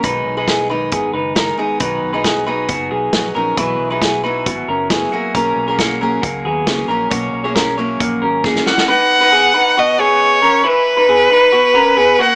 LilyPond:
<<
  \new Staff \with { instrumentName = "Violin" } { \time 4/4 \key b \major \tempo 4 = 136 r1 | r1 | r1 | r1 |
r2. r8 fis''8 | fis''2 dis''8 cis''4. | b'2.~ b'8 fis''8 | }
  \new Staff \with { instrumentName = "Clean electric guitar" } { \time 4/4 \key b \major <dis' b'>8. <dis' b'>16 <b gis'>8 <dis' b'>8 <b gis'>8 <dis' b'>8 <dis' ais'>8 <b gis'>8 | <dis' b'>8. <dis' b'>16 <b gis'>8 <dis' b'>8 <b fis'>8 <b gis'>4 <cis' ais'>8 | <e' b'>8. <dis' b'>16 <b gis'>8 <dis' b'>8 <b fis'>8 <cis' ais'>8 <b gis'>8 <ais fis'>8 | <cis' ais'>8. <cis' ais'>16 <ais fis'>8 <cis' ais'>8 <ais fis'>8 <b gis'>4 <cis' ais'>8 |
<fis' cis''>8. <e' cis''>16 <cis' ais'>8 <e' cis''>8 <ais fis'>8 <cis' ais'>8 <cis' gis'>8 <ais fis'>8 | <dis' b'>8. <dis' b'>16 <b gis'>8 <dis' b'>8 <b fis'>8 <b gis'>4 <cis' ais'>8 | <e' b'>8. <dis' b'>16 <b gis'>8 <dis' b'>8 <b fis'>8 <cis' ais'>8 <b gis'>8 <ais fis'>8 | }
  \new Staff \with { instrumentName = "Steel-string acoustic guitar" } { \time 4/4 \key b \major <b, dis gis dis' gis'>8. <gis dis' gis'>8. <dis gis dis' gis'>4. <dis gis dis' gis'>8 <dis gis dis' gis'>8 | <b, dis fis b dis' gis'>8. <fis b dis' gis'>8. <fis b dis' gis'>4. <fis b dis' gis'>8 <fis b dis' gis'>8 | <b, e fis b e' gis'>8. <fis b e' gis'>8. <fis b e' gis'>4. <fis b e' gis'>8 <fis b e' gis'>8 | <b, fis ais cis' gis'>8. <ais cis' gis'>8. <fis ais cis' gis'>4. <fis ais cis' gis'>8 <fis ais cis' gis'>8 |
<b, fis ais cis' gis'>8. <ais cis' gis'>8. <fis ais cis' gis'>4. <fis ais cis' gis'>8 <fis ais cis' gis'>8 | r1 | r1 | }
  \new Staff \with { instrumentName = "Fingered electric bass" } { \clef bass \time 4/4 \key b \major b,,8 b,,4. gis,,8 fis,,4 r8 | b,,8 b,,4. fis,,8 b,,8 ais,,8 ais,,8 | b,,8 b,,4. gis,,8 fis,,4 r8 | b,,8 b,,4. cis,8 dis,8 r8 ais,,8 |
b,,8 b,,4. ais,,8 gis,,4 r8 | r1 | r1 | }
  \new DrumStaff \with { instrumentName = "Drums" } \drummode { \time 4/4 <hh bd>4 <hh bd sn>4 <hh bd>4 <hh bd sn>4 | <hh bd>4 <hh bd sn>4 <hh bd>4 <hh bd sn>4 | <hh bd>4 <hh bd sn>4 <hh bd>4 <hh bd sn>4 | <hh bd>4 <hh bd sn>4 <hh bd>4 <hh bd sn>4 |
<hh bd>4 <hh bd sn>4 <hh bd>4 <bd sn>16 sn16 sn16 sn16 | r4 r4 r4 r4 | r4 r4 r4 r4 | }
>>